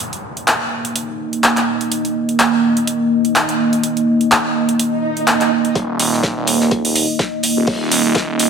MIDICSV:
0, 0, Header, 1, 6, 480
1, 0, Start_track
1, 0, Time_signature, 4, 2, 24, 8
1, 0, Tempo, 480000
1, 8495, End_track
2, 0, Start_track
2, 0, Title_t, "Ambient pad"
2, 0, Program_c, 0, 92
2, 0, Note_on_c, 0, 58, 80
2, 0, Note_on_c, 0, 63, 73
2, 0, Note_on_c, 0, 75, 85
2, 5715, Note_off_c, 0, 63, 0
2, 5715, Note_off_c, 0, 75, 0
2, 5716, Note_off_c, 0, 58, 0
2, 5755, Note_on_c, 0, 58, 81
2, 5755, Note_on_c, 0, 63, 72
2, 5755, Note_on_c, 0, 75, 89
2, 8495, Note_off_c, 0, 58, 0
2, 8495, Note_off_c, 0, 63, 0
2, 8495, Note_off_c, 0, 75, 0
2, 8495, End_track
3, 0, Start_track
3, 0, Title_t, "Detuned saw bass"
3, 0, Program_c, 1, 39
3, 5754, Note_on_c, 1, 27, 95
3, 5977, Note_off_c, 1, 27, 0
3, 5994, Note_on_c, 1, 27, 96
3, 6218, Note_off_c, 1, 27, 0
3, 6367, Note_on_c, 1, 27, 95
3, 6586, Note_off_c, 1, 27, 0
3, 6607, Note_on_c, 1, 27, 96
3, 6826, Note_off_c, 1, 27, 0
3, 6846, Note_on_c, 1, 27, 96
3, 7066, Note_off_c, 1, 27, 0
3, 7566, Note_on_c, 1, 27, 90
3, 7786, Note_off_c, 1, 27, 0
3, 7806, Note_on_c, 1, 27, 96
3, 8026, Note_off_c, 1, 27, 0
3, 8047, Note_on_c, 1, 27, 91
3, 8378, Note_off_c, 1, 27, 0
3, 8395, Note_on_c, 1, 27, 98
3, 8495, Note_off_c, 1, 27, 0
3, 8495, End_track
4, 0, Start_track
4, 0, Title_t, "Downlifter"
4, 0, Program_c, 2, 103
4, 0, Note_on_c, 2, 60, 69
4, 1915, Note_off_c, 2, 60, 0
4, 8495, End_track
5, 0, Start_track
5, 0, Title_t, "Swell"
5, 0, Program_c, 3, 103
5, 4796, Note_on_c, 3, 60, 71
5, 5756, Note_off_c, 3, 60, 0
5, 8495, End_track
6, 0, Start_track
6, 0, Title_t, "Drums"
6, 0, Note_on_c, 9, 42, 78
6, 96, Note_off_c, 9, 42, 0
6, 128, Note_on_c, 9, 42, 36
6, 228, Note_off_c, 9, 42, 0
6, 369, Note_on_c, 9, 42, 35
6, 469, Note_off_c, 9, 42, 0
6, 476, Note_on_c, 9, 42, 75
6, 478, Note_on_c, 9, 39, 117
6, 576, Note_off_c, 9, 42, 0
6, 578, Note_off_c, 9, 39, 0
6, 849, Note_on_c, 9, 42, 51
6, 949, Note_off_c, 9, 42, 0
6, 956, Note_on_c, 9, 42, 77
6, 1056, Note_off_c, 9, 42, 0
6, 1329, Note_on_c, 9, 42, 35
6, 1429, Note_off_c, 9, 42, 0
6, 1437, Note_on_c, 9, 42, 76
6, 1438, Note_on_c, 9, 39, 119
6, 1537, Note_off_c, 9, 42, 0
6, 1538, Note_off_c, 9, 39, 0
6, 1569, Note_on_c, 9, 42, 50
6, 1571, Note_on_c, 9, 39, 36
6, 1669, Note_off_c, 9, 42, 0
6, 1671, Note_off_c, 9, 39, 0
6, 1809, Note_on_c, 9, 42, 34
6, 1909, Note_off_c, 9, 42, 0
6, 1916, Note_on_c, 9, 42, 77
6, 2016, Note_off_c, 9, 42, 0
6, 2049, Note_on_c, 9, 42, 34
6, 2149, Note_off_c, 9, 42, 0
6, 2288, Note_on_c, 9, 42, 34
6, 2388, Note_off_c, 9, 42, 0
6, 2395, Note_on_c, 9, 42, 72
6, 2396, Note_on_c, 9, 39, 114
6, 2495, Note_off_c, 9, 42, 0
6, 2496, Note_off_c, 9, 39, 0
6, 2768, Note_on_c, 9, 42, 47
6, 2868, Note_off_c, 9, 42, 0
6, 2874, Note_on_c, 9, 42, 73
6, 2974, Note_off_c, 9, 42, 0
6, 3248, Note_on_c, 9, 42, 33
6, 3348, Note_off_c, 9, 42, 0
6, 3355, Note_on_c, 9, 42, 73
6, 3357, Note_on_c, 9, 39, 116
6, 3455, Note_off_c, 9, 42, 0
6, 3457, Note_off_c, 9, 39, 0
6, 3488, Note_on_c, 9, 42, 49
6, 3588, Note_off_c, 9, 42, 0
6, 3728, Note_on_c, 9, 42, 35
6, 3828, Note_off_c, 9, 42, 0
6, 3835, Note_on_c, 9, 42, 72
6, 3935, Note_off_c, 9, 42, 0
6, 3969, Note_on_c, 9, 42, 34
6, 4069, Note_off_c, 9, 42, 0
6, 4208, Note_on_c, 9, 42, 34
6, 4308, Note_off_c, 9, 42, 0
6, 4315, Note_on_c, 9, 42, 70
6, 4317, Note_on_c, 9, 39, 109
6, 4415, Note_off_c, 9, 42, 0
6, 4417, Note_off_c, 9, 39, 0
6, 4688, Note_on_c, 9, 42, 47
6, 4788, Note_off_c, 9, 42, 0
6, 4795, Note_on_c, 9, 42, 74
6, 4895, Note_off_c, 9, 42, 0
6, 5168, Note_on_c, 9, 42, 34
6, 5268, Note_off_c, 9, 42, 0
6, 5275, Note_on_c, 9, 42, 74
6, 5276, Note_on_c, 9, 39, 116
6, 5375, Note_off_c, 9, 42, 0
6, 5376, Note_off_c, 9, 39, 0
6, 5408, Note_on_c, 9, 42, 48
6, 5410, Note_on_c, 9, 39, 33
6, 5508, Note_off_c, 9, 42, 0
6, 5510, Note_off_c, 9, 39, 0
6, 5648, Note_on_c, 9, 42, 33
6, 5748, Note_off_c, 9, 42, 0
6, 5755, Note_on_c, 9, 36, 114
6, 5757, Note_on_c, 9, 42, 84
6, 5855, Note_off_c, 9, 36, 0
6, 5857, Note_off_c, 9, 42, 0
6, 5995, Note_on_c, 9, 46, 98
6, 5997, Note_on_c, 9, 42, 73
6, 6095, Note_off_c, 9, 46, 0
6, 6097, Note_off_c, 9, 42, 0
6, 6125, Note_on_c, 9, 38, 37
6, 6225, Note_off_c, 9, 38, 0
6, 6228, Note_on_c, 9, 38, 100
6, 6234, Note_on_c, 9, 36, 114
6, 6237, Note_on_c, 9, 42, 89
6, 6328, Note_off_c, 9, 38, 0
6, 6334, Note_off_c, 9, 36, 0
6, 6337, Note_off_c, 9, 42, 0
6, 6470, Note_on_c, 9, 42, 72
6, 6475, Note_on_c, 9, 46, 108
6, 6570, Note_off_c, 9, 42, 0
6, 6575, Note_off_c, 9, 46, 0
6, 6601, Note_on_c, 9, 38, 52
6, 6701, Note_off_c, 9, 38, 0
6, 6712, Note_on_c, 9, 42, 86
6, 6715, Note_on_c, 9, 36, 117
6, 6812, Note_off_c, 9, 42, 0
6, 6815, Note_off_c, 9, 36, 0
6, 6848, Note_on_c, 9, 46, 58
6, 6948, Note_off_c, 9, 46, 0
6, 6954, Note_on_c, 9, 42, 71
6, 6956, Note_on_c, 9, 46, 104
6, 7054, Note_off_c, 9, 42, 0
6, 7056, Note_off_c, 9, 46, 0
6, 7191, Note_on_c, 9, 38, 106
6, 7193, Note_on_c, 9, 42, 85
6, 7195, Note_on_c, 9, 36, 115
6, 7291, Note_off_c, 9, 38, 0
6, 7293, Note_off_c, 9, 42, 0
6, 7295, Note_off_c, 9, 36, 0
6, 7431, Note_on_c, 9, 42, 60
6, 7436, Note_on_c, 9, 46, 103
6, 7531, Note_off_c, 9, 42, 0
6, 7536, Note_off_c, 9, 46, 0
6, 7669, Note_on_c, 9, 46, 77
6, 7675, Note_on_c, 9, 36, 117
6, 7769, Note_off_c, 9, 46, 0
6, 7775, Note_off_c, 9, 36, 0
6, 7914, Note_on_c, 9, 38, 41
6, 7916, Note_on_c, 9, 46, 109
6, 7924, Note_on_c, 9, 42, 66
6, 8014, Note_off_c, 9, 38, 0
6, 8016, Note_off_c, 9, 46, 0
6, 8024, Note_off_c, 9, 42, 0
6, 8149, Note_on_c, 9, 42, 89
6, 8155, Note_on_c, 9, 36, 120
6, 8163, Note_on_c, 9, 38, 105
6, 8249, Note_off_c, 9, 42, 0
6, 8255, Note_off_c, 9, 36, 0
6, 8263, Note_off_c, 9, 38, 0
6, 8393, Note_on_c, 9, 42, 70
6, 8396, Note_on_c, 9, 46, 108
6, 8493, Note_off_c, 9, 42, 0
6, 8495, Note_off_c, 9, 46, 0
6, 8495, End_track
0, 0, End_of_file